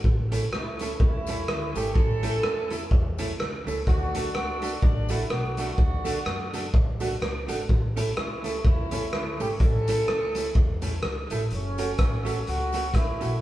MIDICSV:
0, 0, Header, 1, 5, 480
1, 0, Start_track
1, 0, Tempo, 477707
1, 43, Time_signature, 4, 2, 24, 8
1, 13477, End_track
2, 0, Start_track
2, 0, Title_t, "Hollow-body jazz guitar"
2, 0, Program_c, 0, 26
2, 319, Note_on_c, 0, 57, 89
2, 319, Note_on_c, 0, 61, 83
2, 324, Note_on_c, 0, 69, 88
2, 328, Note_on_c, 0, 64, 100
2, 436, Note_off_c, 0, 57, 0
2, 436, Note_off_c, 0, 61, 0
2, 438, Note_off_c, 0, 69, 0
2, 440, Note_off_c, 0, 64, 0
2, 813, Note_on_c, 0, 57, 89
2, 821, Note_on_c, 0, 61, 84
2, 822, Note_on_c, 0, 64, 94
2, 828, Note_on_c, 0, 69, 102
2, 923, Note_off_c, 0, 57, 0
2, 928, Note_off_c, 0, 61, 0
2, 928, Note_off_c, 0, 64, 0
2, 931, Note_off_c, 0, 69, 0
2, 1290, Note_on_c, 0, 57, 84
2, 1294, Note_on_c, 0, 61, 78
2, 1298, Note_on_c, 0, 64, 92
2, 1303, Note_on_c, 0, 69, 83
2, 1403, Note_off_c, 0, 57, 0
2, 1405, Note_off_c, 0, 61, 0
2, 1407, Note_off_c, 0, 64, 0
2, 1409, Note_off_c, 0, 69, 0
2, 1774, Note_on_c, 0, 57, 74
2, 1775, Note_on_c, 0, 61, 89
2, 1778, Note_on_c, 0, 64, 86
2, 1781, Note_on_c, 0, 69, 87
2, 1885, Note_off_c, 0, 57, 0
2, 1886, Note_off_c, 0, 61, 0
2, 1887, Note_off_c, 0, 64, 0
2, 1889, Note_off_c, 0, 69, 0
2, 2239, Note_on_c, 0, 57, 88
2, 2246, Note_on_c, 0, 64, 92
2, 2250, Note_on_c, 0, 61, 92
2, 2251, Note_on_c, 0, 69, 92
2, 2358, Note_off_c, 0, 57, 0
2, 2362, Note_off_c, 0, 64, 0
2, 2364, Note_off_c, 0, 61, 0
2, 2364, Note_off_c, 0, 69, 0
2, 2723, Note_on_c, 0, 57, 75
2, 2725, Note_on_c, 0, 64, 87
2, 2726, Note_on_c, 0, 61, 78
2, 2727, Note_on_c, 0, 69, 98
2, 2841, Note_off_c, 0, 57, 0
2, 2842, Note_off_c, 0, 61, 0
2, 2842, Note_off_c, 0, 64, 0
2, 2843, Note_off_c, 0, 69, 0
2, 3204, Note_on_c, 0, 57, 85
2, 3206, Note_on_c, 0, 61, 87
2, 3207, Note_on_c, 0, 64, 102
2, 3216, Note_on_c, 0, 69, 87
2, 3322, Note_off_c, 0, 57, 0
2, 3323, Note_off_c, 0, 61, 0
2, 3323, Note_off_c, 0, 64, 0
2, 3328, Note_off_c, 0, 69, 0
2, 3686, Note_on_c, 0, 57, 77
2, 3694, Note_on_c, 0, 61, 86
2, 3695, Note_on_c, 0, 64, 82
2, 3699, Note_on_c, 0, 69, 85
2, 3803, Note_off_c, 0, 57, 0
2, 3807, Note_off_c, 0, 61, 0
2, 3808, Note_off_c, 0, 64, 0
2, 3810, Note_off_c, 0, 69, 0
2, 4168, Note_on_c, 0, 57, 81
2, 4175, Note_on_c, 0, 66, 85
2, 4178, Note_on_c, 0, 62, 81
2, 4182, Note_on_c, 0, 69, 96
2, 4285, Note_off_c, 0, 57, 0
2, 4288, Note_off_c, 0, 66, 0
2, 4290, Note_off_c, 0, 62, 0
2, 4292, Note_off_c, 0, 69, 0
2, 4646, Note_on_c, 0, 57, 89
2, 4649, Note_on_c, 0, 62, 86
2, 4650, Note_on_c, 0, 66, 77
2, 4656, Note_on_c, 0, 69, 87
2, 4764, Note_off_c, 0, 57, 0
2, 4766, Note_off_c, 0, 62, 0
2, 4766, Note_off_c, 0, 66, 0
2, 4769, Note_off_c, 0, 69, 0
2, 5122, Note_on_c, 0, 57, 86
2, 5125, Note_on_c, 0, 62, 92
2, 5128, Note_on_c, 0, 66, 96
2, 5129, Note_on_c, 0, 69, 89
2, 5242, Note_off_c, 0, 57, 0
2, 5244, Note_off_c, 0, 62, 0
2, 5245, Note_off_c, 0, 66, 0
2, 5246, Note_off_c, 0, 69, 0
2, 5608, Note_on_c, 0, 57, 76
2, 5613, Note_on_c, 0, 62, 83
2, 5616, Note_on_c, 0, 66, 80
2, 5621, Note_on_c, 0, 69, 84
2, 5726, Note_off_c, 0, 57, 0
2, 5728, Note_off_c, 0, 62, 0
2, 5730, Note_off_c, 0, 66, 0
2, 5732, Note_off_c, 0, 69, 0
2, 6075, Note_on_c, 0, 57, 82
2, 6082, Note_on_c, 0, 62, 93
2, 6087, Note_on_c, 0, 66, 88
2, 6093, Note_on_c, 0, 69, 87
2, 6199, Note_off_c, 0, 57, 0
2, 6203, Note_off_c, 0, 62, 0
2, 6205, Note_off_c, 0, 66, 0
2, 6208, Note_off_c, 0, 69, 0
2, 6570, Note_on_c, 0, 62, 82
2, 6572, Note_on_c, 0, 57, 92
2, 6572, Note_on_c, 0, 66, 89
2, 6582, Note_on_c, 0, 69, 92
2, 6687, Note_off_c, 0, 62, 0
2, 6688, Note_off_c, 0, 57, 0
2, 6688, Note_off_c, 0, 66, 0
2, 6693, Note_off_c, 0, 69, 0
2, 7038, Note_on_c, 0, 57, 88
2, 7039, Note_on_c, 0, 62, 91
2, 7045, Note_on_c, 0, 66, 95
2, 7046, Note_on_c, 0, 69, 96
2, 7161, Note_off_c, 0, 57, 0
2, 7162, Note_off_c, 0, 62, 0
2, 7165, Note_off_c, 0, 66, 0
2, 7165, Note_off_c, 0, 69, 0
2, 7516, Note_on_c, 0, 62, 85
2, 7523, Note_on_c, 0, 57, 85
2, 7523, Note_on_c, 0, 66, 89
2, 7529, Note_on_c, 0, 69, 88
2, 7640, Note_off_c, 0, 62, 0
2, 7643, Note_off_c, 0, 57, 0
2, 7644, Note_off_c, 0, 66, 0
2, 7646, Note_off_c, 0, 69, 0
2, 8003, Note_on_c, 0, 61, 83
2, 8005, Note_on_c, 0, 57, 88
2, 8011, Note_on_c, 0, 64, 91
2, 8012, Note_on_c, 0, 69, 93
2, 8124, Note_off_c, 0, 61, 0
2, 8125, Note_off_c, 0, 57, 0
2, 8128, Note_off_c, 0, 64, 0
2, 8128, Note_off_c, 0, 69, 0
2, 8481, Note_on_c, 0, 57, 85
2, 8489, Note_on_c, 0, 61, 76
2, 8495, Note_on_c, 0, 64, 85
2, 8497, Note_on_c, 0, 69, 89
2, 8602, Note_off_c, 0, 57, 0
2, 8606, Note_off_c, 0, 61, 0
2, 8609, Note_off_c, 0, 64, 0
2, 8610, Note_off_c, 0, 69, 0
2, 8964, Note_on_c, 0, 57, 77
2, 8966, Note_on_c, 0, 61, 93
2, 8969, Note_on_c, 0, 64, 92
2, 8977, Note_on_c, 0, 69, 88
2, 9084, Note_off_c, 0, 57, 0
2, 9084, Note_off_c, 0, 61, 0
2, 9086, Note_off_c, 0, 64, 0
2, 9090, Note_off_c, 0, 69, 0
2, 9446, Note_on_c, 0, 57, 75
2, 9447, Note_on_c, 0, 61, 82
2, 9449, Note_on_c, 0, 64, 76
2, 9455, Note_on_c, 0, 69, 85
2, 9564, Note_off_c, 0, 57, 0
2, 9565, Note_off_c, 0, 61, 0
2, 9566, Note_off_c, 0, 64, 0
2, 9569, Note_off_c, 0, 69, 0
2, 9932, Note_on_c, 0, 57, 75
2, 9936, Note_on_c, 0, 61, 82
2, 9938, Note_on_c, 0, 69, 95
2, 9940, Note_on_c, 0, 64, 90
2, 10047, Note_off_c, 0, 57, 0
2, 10049, Note_off_c, 0, 61, 0
2, 10050, Note_off_c, 0, 69, 0
2, 10051, Note_off_c, 0, 64, 0
2, 10403, Note_on_c, 0, 57, 76
2, 10410, Note_on_c, 0, 69, 80
2, 10413, Note_on_c, 0, 61, 77
2, 10416, Note_on_c, 0, 64, 80
2, 10522, Note_off_c, 0, 57, 0
2, 10526, Note_off_c, 0, 69, 0
2, 10527, Note_off_c, 0, 61, 0
2, 10529, Note_off_c, 0, 64, 0
2, 10873, Note_on_c, 0, 57, 79
2, 10877, Note_on_c, 0, 61, 86
2, 10881, Note_on_c, 0, 64, 79
2, 10883, Note_on_c, 0, 69, 85
2, 10997, Note_off_c, 0, 57, 0
2, 10999, Note_off_c, 0, 61, 0
2, 11001, Note_off_c, 0, 64, 0
2, 11002, Note_off_c, 0, 69, 0
2, 11363, Note_on_c, 0, 57, 79
2, 11366, Note_on_c, 0, 61, 79
2, 11372, Note_on_c, 0, 64, 74
2, 11376, Note_on_c, 0, 69, 81
2, 11481, Note_off_c, 0, 57, 0
2, 11483, Note_off_c, 0, 61, 0
2, 11486, Note_off_c, 0, 64, 0
2, 11488, Note_off_c, 0, 69, 0
2, 11843, Note_on_c, 0, 57, 85
2, 11846, Note_on_c, 0, 61, 91
2, 11846, Note_on_c, 0, 66, 80
2, 11850, Note_on_c, 0, 69, 97
2, 11961, Note_off_c, 0, 57, 0
2, 11962, Note_off_c, 0, 61, 0
2, 11962, Note_off_c, 0, 66, 0
2, 11964, Note_off_c, 0, 69, 0
2, 12307, Note_on_c, 0, 57, 82
2, 12311, Note_on_c, 0, 61, 93
2, 12314, Note_on_c, 0, 66, 80
2, 12320, Note_on_c, 0, 69, 94
2, 12432, Note_off_c, 0, 57, 0
2, 12434, Note_off_c, 0, 61, 0
2, 12436, Note_off_c, 0, 66, 0
2, 12439, Note_off_c, 0, 69, 0
2, 12798, Note_on_c, 0, 57, 82
2, 12804, Note_on_c, 0, 61, 84
2, 12805, Note_on_c, 0, 66, 90
2, 12808, Note_on_c, 0, 69, 88
2, 12917, Note_off_c, 0, 57, 0
2, 12920, Note_off_c, 0, 61, 0
2, 12920, Note_off_c, 0, 66, 0
2, 12922, Note_off_c, 0, 69, 0
2, 13269, Note_on_c, 0, 61, 80
2, 13272, Note_on_c, 0, 57, 72
2, 13278, Note_on_c, 0, 66, 77
2, 13284, Note_on_c, 0, 69, 85
2, 13392, Note_off_c, 0, 61, 0
2, 13393, Note_off_c, 0, 57, 0
2, 13396, Note_off_c, 0, 66, 0
2, 13399, Note_off_c, 0, 69, 0
2, 13477, End_track
3, 0, Start_track
3, 0, Title_t, "Horn section"
3, 0, Program_c, 1, 61
3, 526, Note_on_c, 1, 57, 58
3, 530, Note_on_c, 1, 61, 60
3, 544, Note_on_c, 1, 64, 80
3, 983, Note_off_c, 1, 64, 0
3, 992, Note_off_c, 1, 57, 0
3, 993, Note_off_c, 1, 61, 0
3, 1004, Note_on_c, 1, 57, 69
3, 1005, Note_on_c, 1, 61, 69
3, 1008, Note_on_c, 1, 64, 93
3, 1725, Note_off_c, 1, 64, 0
3, 1761, Note_on_c, 1, 67, 98
3, 1927, Note_off_c, 1, 57, 0
3, 1927, Note_off_c, 1, 61, 0
3, 1958, Note_on_c, 1, 69, 111
3, 1960, Note_on_c, 1, 61, 74
3, 1961, Note_on_c, 1, 64, 75
3, 1966, Note_off_c, 1, 67, 0
3, 2886, Note_off_c, 1, 61, 0
3, 2886, Note_off_c, 1, 64, 0
3, 2925, Note_off_c, 1, 69, 0
3, 3890, Note_on_c, 1, 57, 77
3, 3896, Note_on_c, 1, 62, 77
3, 3905, Note_on_c, 1, 66, 105
3, 4346, Note_off_c, 1, 66, 0
3, 4358, Note_off_c, 1, 57, 0
3, 4360, Note_off_c, 1, 62, 0
3, 4370, Note_on_c, 1, 57, 70
3, 4372, Note_on_c, 1, 62, 81
3, 4377, Note_on_c, 1, 66, 104
3, 4822, Note_off_c, 1, 66, 0
3, 4844, Note_off_c, 1, 62, 0
3, 4845, Note_off_c, 1, 57, 0
3, 4856, Note_on_c, 1, 62, 99
3, 4857, Note_on_c, 1, 57, 68
3, 4858, Note_on_c, 1, 54, 66
3, 5132, Note_off_c, 1, 62, 0
3, 5137, Note_on_c, 1, 64, 92
3, 5338, Note_off_c, 1, 64, 0
3, 5344, Note_on_c, 1, 66, 97
3, 5611, Note_off_c, 1, 66, 0
3, 5623, Note_on_c, 1, 66, 84
3, 5673, Note_off_c, 1, 66, 0
3, 5688, Note_on_c, 1, 64, 77
3, 5739, Note_off_c, 1, 57, 0
3, 5740, Note_off_c, 1, 64, 0
3, 5749, Note_on_c, 1, 66, 91
3, 5751, Note_on_c, 1, 57, 69
3, 5753, Note_on_c, 1, 62, 68
3, 5777, Note_off_c, 1, 54, 0
3, 6581, Note_off_c, 1, 66, 0
3, 6662, Note_off_c, 1, 57, 0
3, 6662, Note_off_c, 1, 62, 0
3, 8224, Note_on_c, 1, 64, 81
3, 8229, Note_on_c, 1, 61, 61
3, 8234, Note_on_c, 1, 57, 59
3, 8666, Note_off_c, 1, 64, 0
3, 8702, Note_off_c, 1, 57, 0
3, 8708, Note_off_c, 1, 61, 0
3, 8709, Note_on_c, 1, 64, 93
3, 8714, Note_on_c, 1, 57, 69
3, 8720, Note_on_c, 1, 61, 71
3, 9418, Note_off_c, 1, 64, 0
3, 9454, Note_on_c, 1, 67, 91
3, 9544, Note_off_c, 1, 67, 0
3, 9623, Note_off_c, 1, 57, 0
3, 9626, Note_off_c, 1, 61, 0
3, 9668, Note_on_c, 1, 61, 77
3, 9669, Note_on_c, 1, 64, 73
3, 9669, Note_on_c, 1, 69, 108
3, 10579, Note_off_c, 1, 61, 0
3, 10580, Note_off_c, 1, 64, 0
3, 10580, Note_off_c, 1, 69, 0
3, 11570, Note_on_c, 1, 54, 69
3, 11575, Note_on_c, 1, 57, 68
3, 11601, Note_on_c, 1, 61, 90
3, 12488, Note_off_c, 1, 54, 0
3, 12490, Note_off_c, 1, 57, 0
3, 12503, Note_off_c, 1, 61, 0
3, 12536, Note_on_c, 1, 61, 75
3, 12538, Note_on_c, 1, 57, 83
3, 12545, Note_on_c, 1, 66, 110
3, 12989, Note_off_c, 1, 61, 0
3, 12993, Note_off_c, 1, 57, 0
3, 13001, Note_on_c, 1, 61, 71
3, 13006, Note_on_c, 1, 57, 71
3, 13014, Note_on_c, 1, 64, 94
3, 13015, Note_off_c, 1, 66, 0
3, 13449, Note_off_c, 1, 61, 0
3, 13451, Note_off_c, 1, 57, 0
3, 13477, Note_off_c, 1, 64, 0
3, 13477, End_track
4, 0, Start_track
4, 0, Title_t, "Upright bass"
4, 0, Program_c, 2, 32
4, 48, Note_on_c, 2, 33, 102
4, 455, Note_off_c, 2, 33, 0
4, 533, Note_on_c, 2, 37, 88
4, 938, Note_off_c, 2, 37, 0
4, 1007, Note_on_c, 2, 40, 102
4, 1491, Note_off_c, 2, 40, 0
4, 1491, Note_on_c, 2, 38, 96
4, 1725, Note_off_c, 2, 38, 0
4, 1762, Note_on_c, 2, 32, 88
4, 1936, Note_off_c, 2, 32, 0
4, 1965, Note_on_c, 2, 33, 103
4, 2375, Note_off_c, 2, 33, 0
4, 2445, Note_on_c, 2, 40, 81
4, 2855, Note_off_c, 2, 40, 0
4, 2928, Note_on_c, 2, 40, 101
4, 3338, Note_off_c, 2, 40, 0
4, 3406, Note_on_c, 2, 37, 88
4, 3644, Note_off_c, 2, 37, 0
4, 3688, Note_on_c, 2, 37, 79
4, 3861, Note_off_c, 2, 37, 0
4, 3892, Note_on_c, 2, 38, 106
4, 4301, Note_off_c, 2, 38, 0
4, 4365, Note_on_c, 2, 37, 83
4, 4777, Note_off_c, 2, 37, 0
4, 4850, Note_on_c, 2, 33, 93
4, 5260, Note_off_c, 2, 33, 0
4, 5325, Note_on_c, 2, 35, 90
4, 5738, Note_off_c, 2, 35, 0
4, 5810, Note_on_c, 2, 38, 100
4, 6220, Note_off_c, 2, 38, 0
4, 6291, Note_on_c, 2, 42, 90
4, 6701, Note_off_c, 2, 42, 0
4, 6775, Note_on_c, 2, 33, 86
4, 7184, Note_off_c, 2, 33, 0
4, 7251, Note_on_c, 2, 37, 93
4, 7488, Note_off_c, 2, 37, 0
4, 7530, Note_on_c, 2, 32, 79
4, 7704, Note_off_c, 2, 32, 0
4, 7735, Note_on_c, 2, 33, 101
4, 8143, Note_off_c, 2, 33, 0
4, 8221, Note_on_c, 2, 37, 91
4, 8626, Note_off_c, 2, 37, 0
4, 8691, Note_on_c, 2, 40, 94
4, 9172, Note_off_c, 2, 40, 0
4, 9172, Note_on_c, 2, 38, 93
4, 9408, Note_off_c, 2, 38, 0
4, 9447, Note_on_c, 2, 32, 85
4, 9622, Note_off_c, 2, 32, 0
4, 9649, Note_on_c, 2, 33, 107
4, 10059, Note_off_c, 2, 33, 0
4, 10132, Note_on_c, 2, 37, 93
4, 10540, Note_off_c, 2, 37, 0
4, 10603, Note_on_c, 2, 40, 105
4, 11015, Note_off_c, 2, 40, 0
4, 11098, Note_on_c, 2, 37, 80
4, 11330, Note_off_c, 2, 37, 0
4, 11370, Note_on_c, 2, 33, 87
4, 11541, Note_off_c, 2, 33, 0
4, 11572, Note_on_c, 2, 30, 100
4, 11979, Note_off_c, 2, 30, 0
4, 12046, Note_on_c, 2, 33, 88
4, 12454, Note_off_c, 2, 33, 0
4, 12538, Note_on_c, 2, 37, 95
4, 13002, Note_off_c, 2, 37, 0
4, 13002, Note_on_c, 2, 33, 74
4, 13239, Note_off_c, 2, 33, 0
4, 13292, Note_on_c, 2, 34, 93
4, 13461, Note_off_c, 2, 34, 0
4, 13477, End_track
5, 0, Start_track
5, 0, Title_t, "Drums"
5, 41, Note_on_c, 9, 36, 101
5, 142, Note_off_c, 9, 36, 0
5, 320, Note_on_c, 9, 42, 101
5, 335, Note_on_c, 9, 54, 75
5, 420, Note_off_c, 9, 42, 0
5, 435, Note_off_c, 9, 54, 0
5, 529, Note_on_c, 9, 37, 111
5, 629, Note_off_c, 9, 37, 0
5, 796, Note_on_c, 9, 42, 75
5, 819, Note_on_c, 9, 54, 83
5, 897, Note_off_c, 9, 42, 0
5, 919, Note_off_c, 9, 54, 0
5, 1004, Note_on_c, 9, 36, 122
5, 1105, Note_off_c, 9, 36, 0
5, 1272, Note_on_c, 9, 54, 83
5, 1278, Note_on_c, 9, 42, 89
5, 1372, Note_off_c, 9, 54, 0
5, 1379, Note_off_c, 9, 42, 0
5, 1491, Note_on_c, 9, 37, 110
5, 1591, Note_off_c, 9, 37, 0
5, 1761, Note_on_c, 9, 42, 71
5, 1765, Note_on_c, 9, 54, 82
5, 1862, Note_off_c, 9, 42, 0
5, 1866, Note_off_c, 9, 54, 0
5, 1964, Note_on_c, 9, 36, 103
5, 2065, Note_off_c, 9, 36, 0
5, 2240, Note_on_c, 9, 42, 98
5, 2253, Note_on_c, 9, 54, 73
5, 2341, Note_off_c, 9, 42, 0
5, 2353, Note_off_c, 9, 54, 0
5, 2445, Note_on_c, 9, 37, 113
5, 2546, Note_off_c, 9, 37, 0
5, 2716, Note_on_c, 9, 42, 74
5, 2739, Note_on_c, 9, 54, 82
5, 2816, Note_off_c, 9, 42, 0
5, 2839, Note_off_c, 9, 54, 0
5, 2925, Note_on_c, 9, 36, 115
5, 3025, Note_off_c, 9, 36, 0
5, 3200, Note_on_c, 9, 54, 83
5, 3202, Note_on_c, 9, 42, 90
5, 3300, Note_off_c, 9, 54, 0
5, 3303, Note_off_c, 9, 42, 0
5, 3415, Note_on_c, 9, 37, 103
5, 3516, Note_off_c, 9, 37, 0
5, 3685, Note_on_c, 9, 46, 42
5, 3699, Note_on_c, 9, 54, 85
5, 3785, Note_off_c, 9, 46, 0
5, 3800, Note_off_c, 9, 54, 0
5, 3888, Note_on_c, 9, 36, 103
5, 3893, Note_on_c, 9, 44, 60
5, 3989, Note_off_c, 9, 36, 0
5, 3993, Note_off_c, 9, 44, 0
5, 4166, Note_on_c, 9, 42, 110
5, 4174, Note_on_c, 9, 54, 78
5, 4266, Note_off_c, 9, 42, 0
5, 4275, Note_off_c, 9, 54, 0
5, 4368, Note_on_c, 9, 37, 113
5, 4469, Note_off_c, 9, 37, 0
5, 4639, Note_on_c, 9, 42, 75
5, 4659, Note_on_c, 9, 54, 84
5, 4740, Note_off_c, 9, 42, 0
5, 4760, Note_off_c, 9, 54, 0
5, 4847, Note_on_c, 9, 36, 114
5, 4948, Note_off_c, 9, 36, 0
5, 5111, Note_on_c, 9, 54, 81
5, 5119, Note_on_c, 9, 42, 89
5, 5212, Note_off_c, 9, 54, 0
5, 5220, Note_off_c, 9, 42, 0
5, 5329, Note_on_c, 9, 37, 107
5, 5429, Note_off_c, 9, 37, 0
5, 5598, Note_on_c, 9, 42, 77
5, 5608, Note_on_c, 9, 54, 78
5, 5698, Note_off_c, 9, 42, 0
5, 5709, Note_off_c, 9, 54, 0
5, 5808, Note_on_c, 9, 36, 113
5, 5909, Note_off_c, 9, 36, 0
5, 6081, Note_on_c, 9, 54, 78
5, 6086, Note_on_c, 9, 42, 104
5, 6182, Note_off_c, 9, 54, 0
5, 6187, Note_off_c, 9, 42, 0
5, 6291, Note_on_c, 9, 37, 123
5, 6391, Note_off_c, 9, 37, 0
5, 6566, Note_on_c, 9, 42, 82
5, 6575, Note_on_c, 9, 54, 78
5, 6667, Note_off_c, 9, 42, 0
5, 6675, Note_off_c, 9, 54, 0
5, 6770, Note_on_c, 9, 36, 121
5, 6870, Note_off_c, 9, 36, 0
5, 7035, Note_on_c, 9, 54, 80
5, 7041, Note_on_c, 9, 42, 91
5, 7135, Note_off_c, 9, 54, 0
5, 7142, Note_off_c, 9, 42, 0
5, 7256, Note_on_c, 9, 37, 112
5, 7357, Note_off_c, 9, 37, 0
5, 7520, Note_on_c, 9, 42, 74
5, 7529, Note_on_c, 9, 54, 82
5, 7621, Note_off_c, 9, 42, 0
5, 7629, Note_off_c, 9, 54, 0
5, 7730, Note_on_c, 9, 36, 102
5, 7830, Note_off_c, 9, 36, 0
5, 8008, Note_on_c, 9, 54, 73
5, 8009, Note_on_c, 9, 42, 109
5, 8108, Note_off_c, 9, 54, 0
5, 8110, Note_off_c, 9, 42, 0
5, 8210, Note_on_c, 9, 37, 109
5, 8310, Note_off_c, 9, 37, 0
5, 8480, Note_on_c, 9, 42, 77
5, 8500, Note_on_c, 9, 54, 79
5, 8580, Note_off_c, 9, 42, 0
5, 8600, Note_off_c, 9, 54, 0
5, 8687, Note_on_c, 9, 36, 120
5, 8787, Note_off_c, 9, 36, 0
5, 8954, Note_on_c, 9, 42, 90
5, 8958, Note_on_c, 9, 54, 78
5, 9055, Note_off_c, 9, 42, 0
5, 9059, Note_off_c, 9, 54, 0
5, 9172, Note_on_c, 9, 37, 108
5, 9273, Note_off_c, 9, 37, 0
5, 9443, Note_on_c, 9, 46, 44
5, 9449, Note_on_c, 9, 54, 82
5, 9544, Note_off_c, 9, 46, 0
5, 9549, Note_off_c, 9, 54, 0
5, 9647, Note_on_c, 9, 36, 107
5, 9647, Note_on_c, 9, 44, 64
5, 9748, Note_off_c, 9, 36, 0
5, 9748, Note_off_c, 9, 44, 0
5, 9923, Note_on_c, 9, 42, 110
5, 9927, Note_on_c, 9, 54, 72
5, 10023, Note_off_c, 9, 42, 0
5, 10027, Note_off_c, 9, 54, 0
5, 10129, Note_on_c, 9, 37, 117
5, 10230, Note_off_c, 9, 37, 0
5, 10398, Note_on_c, 9, 42, 82
5, 10410, Note_on_c, 9, 54, 87
5, 10498, Note_off_c, 9, 42, 0
5, 10511, Note_off_c, 9, 54, 0
5, 10603, Note_on_c, 9, 36, 116
5, 10704, Note_off_c, 9, 36, 0
5, 10869, Note_on_c, 9, 42, 89
5, 10871, Note_on_c, 9, 54, 79
5, 10969, Note_off_c, 9, 42, 0
5, 10972, Note_off_c, 9, 54, 0
5, 11079, Note_on_c, 9, 37, 109
5, 11179, Note_off_c, 9, 37, 0
5, 11354, Note_on_c, 9, 42, 68
5, 11362, Note_on_c, 9, 54, 80
5, 11454, Note_off_c, 9, 42, 0
5, 11463, Note_off_c, 9, 54, 0
5, 11559, Note_on_c, 9, 42, 55
5, 11659, Note_off_c, 9, 42, 0
5, 11835, Note_on_c, 9, 54, 78
5, 11840, Note_on_c, 9, 42, 104
5, 11936, Note_off_c, 9, 54, 0
5, 11941, Note_off_c, 9, 42, 0
5, 12039, Note_on_c, 9, 42, 83
5, 12044, Note_on_c, 9, 36, 111
5, 12046, Note_on_c, 9, 37, 117
5, 12140, Note_off_c, 9, 42, 0
5, 12145, Note_off_c, 9, 36, 0
5, 12146, Note_off_c, 9, 37, 0
5, 12321, Note_on_c, 9, 42, 77
5, 12324, Note_on_c, 9, 54, 80
5, 12422, Note_off_c, 9, 42, 0
5, 12424, Note_off_c, 9, 54, 0
5, 12530, Note_on_c, 9, 42, 78
5, 12631, Note_off_c, 9, 42, 0
5, 12786, Note_on_c, 9, 54, 79
5, 12797, Note_on_c, 9, 42, 93
5, 12886, Note_off_c, 9, 54, 0
5, 12898, Note_off_c, 9, 42, 0
5, 12999, Note_on_c, 9, 36, 105
5, 13000, Note_on_c, 9, 42, 64
5, 13009, Note_on_c, 9, 37, 106
5, 13100, Note_off_c, 9, 36, 0
5, 13101, Note_off_c, 9, 42, 0
5, 13109, Note_off_c, 9, 37, 0
5, 13273, Note_on_c, 9, 42, 67
5, 13280, Note_on_c, 9, 54, 78
5, 13373, Note_off_c, 9, 42, 0
5, 13380, Note_off_c, 9, 54, 0
5, 13477, End_track
0, 0, End_of_file